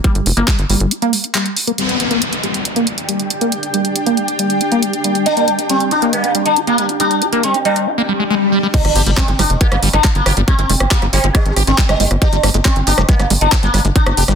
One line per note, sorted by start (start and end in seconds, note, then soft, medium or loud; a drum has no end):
0.04 0.28 G3 medium
0.04 kick loud
0.04 closed hi-hat loud
0.15 0.21 G1 medium
0.15 closed hi-hat soft
0.26 0.32 F1 loud
0.26 0.30 G4 loud
0.26 open hi-hat loud
0.37 0.43 G1 medium
0.37 0.49 A#3 loud
0.37 closed hi-hat soft
0.48 0.60 G3 loud
0.48 kick loud
0.48 clap loud
0.48 closed hi-hat medium
0.59 0.65 G1 medium
0.59 0.61 G4 loud
0.59 closed hi-hat soft
0.69 0.76 G1 loud
0.69 0.93 G3 medium
0.69 open hi-hat loud
0.80 0.86 G1 medium
0.80 closed hi-hat soft
0.91 0.96 G4 loud
0.91 closed hi-hat loud
1.02 1.14 A#3 loud
1.02 closed hi-hat soft
1.13 1.25 G3 loud
1.13 open hi-hat loud
1.24 1.27 G4 loud
1.24 closed hi-hat soft
1.35 1.58 G3 medium
1.35 clap loud
1.35 closed hi-hat medium
1.46 closed hi-hat soft
1.57 1.61 G4 loud
1.57 open hi-hat medium
1.67 1.72 A#3 loud
1.67 closed hi-hat soft
1.78 2.01 G3 medium
1.78 7.87 D4 medium
1.78 closed hi-hat medium
1.78 downlifter medium
1.89 7.87 G5 medium
1.89 closed hi-hat soft
2.00 2.04 G4 loud
2.00 closed hi-hat medium
2.11 2.23 A#3 loud
2.11 closed hi-hat soft
2.22 2.34 G3 loud
2.22 closed hi-hat medium
2.27 7.87 G4 medium
2.33 2.35 G4 loud
2.33 closed hi-hat soft
2.43 2.67 G3 medium
2.43 closed hi-hat soft
2.54 closed hi-hat soft
2.65 2.70 G4 medium
2.65 closed hi-hat loud
2.76 2.88 A#3 loud
2.76 closed hi-hat soft
2.87 2.99 G3 loud
2.87 closed hi-hat medium
2.98 3.00 G4 loud
2.98 closed hi-hat soft
3.09 3.32 G3 medium
3.09 closed hi-hat medium
3.20 closed hi-hat soft
3.30 3.35 G4 loud
3.30 closed hi-hat medium
3.41 3.54 A#3 medium
3.41 closed hi-hat soft
3.52 3.65 G3 medium
3.52 closed hi-hat medium
3.63 3.66 G4 loud
3.63 closed hi-hat soft
3.74 3.97 G3 medium
3.74 closed hi-hat medium
3.85 closed hi-hat soft
3.96 closed hi-hat medium
4.06 4.19 A#3 loud
4.06 closed hi-hat soft
4.17 4.30 G3 loud
4.17 closed hi-hat soft
4.28 4.31 G4 loud
4.28 closed hi-hat soft
4.39 4.62 G3 medium
4.39 closed hi-hat medium
4.50 closed hi-hat soft
4.61 4.65 G4 loud
4.61 closed hi-hat medium
4.72 4.84 A#3 loud
4.72 closed hi-hat soft
4.83 4.95 G3 loud
4.83 closed hi-hat medium
4.93 closed hi-hat soft
5.04 5.28 G3 medium
5.04 closed hi-hat medium
5.15 closed hi-hat soft
5.26 5.50 D4 loud
5.26 5.30 G4 loud
5.26 closed hi-hat medium
5.37 5.49 A#3 loud
5.37 closed hi-hat soft
5.48 5.60 G3 loud
5.48 closed hi-hat medium
5.59 5.61 G4 loud
5.59 closed hi-hat soft
5.70 5.93 G3 medium
5.70 5.82 C4 medium
5.70 closed hi-hat medium
5.80 closed hi-hat soft
5.91 6.03 D4 medium
5.91 5.96 G4 loud
5.91 closed hi-hat soft
6.02 6.15 A#3 medium
6.02 closed hi-hat soft
6.13 6.25 G3 loud
6.13 6.31 A#3 medium
6.13 closed hi-hat medium
6.24 6.27 G4 medium
6.24 closed hi-hat soft
6.35 6.58 G3 medium
6.35 closed hi-hat medium
6.46 6.58 D4 medium
6.46 closed hi-hat soft
6.56 6.61 G4 loud
6.56 closed hi-hat medium
6.67 6.80 A#3 loud
6.67 6.85 A#3 loud
6.67 closed hi-hat soft
6.78 6.91 G3 loud
6.78 closed hi-hat medium
6.89 6.92 G4 loud
6.89 closed hi-hat soft
7.00 7.23 G3 medium
7.00 7.24 D4 loud
7.00 closed hi-hat medium
7.11 closed hi-hat soft
7.22 7.26 G4 loud
7.22 closed hi-hat medium
7.33 7.45 A#3 loud
7.33 closed hi-hat soft
7.43 7.56 G3 loud
7.43 7.56 C4 medium
7.43 closed hi-hat medium
7.54 7.57 G4 loud
7.54 closed hi-hat soft
7.65 7.88 G3 medium
7.65 7.77 D4 medium
7.65 closed hi-hat soft
7.76 closed hi-hat soft
7.87 7.91 G4 loud
7.87 swell medium
7.98 8.02 A#3 medium
8.09 8.13 G3 medium
8.20 8.24 G#3 medium
8.30 8.35 G#3 loud
8.52 8.59 G3 medium
8.63 8.67 G3 medium
8.74 8.77 G3 loud
8.74 8.98 D4 loud
8.74 kick loud
8.74 closed hi-hat loud
8.74 crash loud
8.74 impact medium
8.85 8.91 G1 medium
8.85 cross-stick soft
8.85 closed hi-hat soft
8.96 9.02 G1 loud
8.96 9.02 G4 medium
8.96 open hi-hat loud
9.06 9.13 G1 medium
9.06 9.11 G3 medium
9.06 closed hi-hat soft
9.17 9.24 G3 medium
9.17 9.29 C4 medium
9.17 kick loud
9.17 cross-stick medium
9.17 clap loud
9.17 closed hi-hat loud
9.28 9.34 G1 medium
9.28 9.31 G#3 medium
9.28 closed hi-hat soft
9.39 9.45 G1 loud
9.39 9.42 G3 loud
9.39 9.51 D4 medium
9.39 cross-stick soft
9.39 open hi-hat loud
9.50 9.56 F1 medium
9.50 closed hi-hat soft
9.61 9.79 A#3 medium
9.61 9.67 G4 medium
9.61 kick loud
9.61 closed hi-hat loud
9.72 9.78 G1 medium
9.72 9.76 G3 medium
9.72 cross-stick medium
9.72 closed hi-hat soft
9.83 9.89 G1 loud
9.83 9.89 G3 medium
9.83 open hi-hat loud
9.93 9.99 G1 loud
9.93 9.96 G#3 medium
9.93 10.06 D4 medium
9.93 cross-stick soft
9.93 closed hi-hat soft
10.04 10.07 G3 loud
10.04 kick loud
10.04 clap loud
10.04 closed hi-hat loud
10.15 10.21 G1 medium
10.15 10.33 A#3 loud
10.15 closed hi-hat soft
10.26 10.32 G1 medium
10.26 10.33 G4 medium
10.26 cross-stick medium
10.26 open hi-hat loud
10.37 10.43 G1 loud
10.37 10.41 G3 medium
10.37 closed hi-hat soft
10.48 10.54 G3 medium
10.48 10.72 C4 loud
10.48 kick loud
10.48 cross-stick soft
10.48 closed hi-hat medium
10.59 10.65 G1 medium
10.59 10.61 G#3 medium
10.59 closed hi-hat soft
10.70 10.76 F1 loud
10.70 10.72 G3 loud
10.70 open hi-hat loud
10.80 10.86 G1 medium
10.80 cross-stick medium
10.80 closed hi-hat soft
10.91 11.03 A#3 medium
10.91 10.98 G4 medium
10.91 kick loud
10.91 clap loud
10.91 closed hi-hat medium
11.02 11.08 G1 medium
11.02 11.07 G3 medium
11.02 cross-stick soft
11.02 closed hi-hat soft
11.13 11.19 G1 loud
11.13 11.20 G3 medium
11.13 11.25 C4 medium
11.13 open hi-hat loud
11.24 11.30 G1 medium
11.24 11.27 G#3 medium
11.24 closed hi-hat soft
11.35 11.53 G3 medium
11.35 11.37 G3 loud
11.35 kick loud
11.35 cross-stick medium
11.35 closed hi-hat loud
11.46 11.52 G#1 medium
11.46 closed hi-hat soft
11.56 11.62 G#1 loud
11.56 11.63 G4 medium
11.56 cross-stick soft
11.56 open hi-hat loud
11.67 11.73 G#1 medium
11.67 11.72 G3 medium
11.67 11.79 C4 medium
11.67 closed hi-hat soft
11.78 11.85 G3 medium
11.78 kick loud
11.78 clap loud
11.78 closed hi-hat medium
11.89 11.95 G1 medium
11.89 12.07 G3 loud
11.89 11.92 G#3 medium
11.89 cross-stick medium
11.89 closed hi-hat soft
12.00 12.06 G1 medium
12.00 12.03 G3 loud
12.00 open hi-hat loud
12.11 12.17 G1 loud
12.11 cross-stick soft
12.11 closed hi-hat soft
12.22 12.46 D4 loud
12.22 12.28 G4 medium
12.22 kick loud
12.22 closed hi-hat medium
12.33 12.39 G1 medium
12.33 12.37 G3 medium
12.33 closed hi-hat soft
12.43 12.49 G1 loud
12.43 12.50 G3 medium
12.43 cross-stick medium
12.43 open hi-hat loud
12.54 12.60 G1 medium
12.54 12.57 G#3 medium
12.54 closed hi-hat soft
12.65 12.68 G3 loud
12.65 12.77 C4 medium
12.65 kick loud
12.65 cross-stick soft
12.65 clap loud
12.65 closed hi-hat medium
12.76 12.82 G1 medium
12.76 closed hi-hat soft
12.87 12.93 G1 loud
12.87 12.99 D4 medium
12.87 12.94 G4 medium
12.87 open hi-hat loud
12.98 13.04 F1 medium
12.98 13.02 G3 medium
12.98 cross-stick medium
12.98 closed hi-hat soft
13.09 13.15 G3 medium
13.09 13.27 A#3 medium
13.09 kick loud
13.09 closed hi-hat medium
13.19 13.26 G1 medium
13.19 13.22 G#3 medium
13.19 cross-stick soft
13.19 closed hi-hat soft
13.30 13.36 G1 loud
13.30 13.33 G3 loud
13.30 open hi-hat loud
13.41 13.47 G1 loud
13.41 13.53 D4 medium
13.41 closed hi-hat soft
13.52 13.59 G4 medium
13.52 kick loud
13.52 cross-stick medium
13.52 clap loud
13.52 closed hi-hat medium
13.63 13.69 G1 medium
13.63 13.67 G3 medium
13.63 13.81 A#3 loud
13.63 closed hi-hat soft
13.74 13.80 G1 loud
13.74 13.80 G3 medium
13.74 cross-stick soft
13.74 open hi-hat loud
13.85 13.91 G1 medium
13.85 13.87 G#3 medium
13.85 closed hi-hat soft
13.96 13.98 G3 loud
13.96 14.20 D4 loud
13.96 kick loud
13.96 closed hi-hat medium
14.06 14.12 G1 medium
14.06 cross-stick medium
14.06 closed hi-hat soft
14.17 14.23 F1 loud
14.17 14.24 G4 medium
14.17 open hi-hat loud
14.28 14.34 G1 medium
14.28 14.33 G3 medium
14.28 cross-stick soft
14.28 closed hi-hat soft